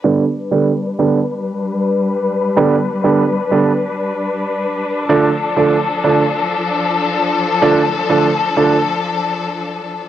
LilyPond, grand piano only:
\new Staff \with { instrumentName = "Grand piano" } { \clef bass \time 4/4 \key g \mixolydian \tempo 4 = 95 <d g b d'>16 r8 <d g b d'>16 r8 <d g b d'>16 r2 r16 | <d g b d'>16 r8 <d g b d'>16 r8 <d g b d'>16 r2 r16 | <d f a d'>16 r8 <d f a d'>16 r8 <d f a d'>16 r2 r16 | <d f a d'>16 r8 <d f a d'>16 r8 <d f a d'>16 r2 r16 | }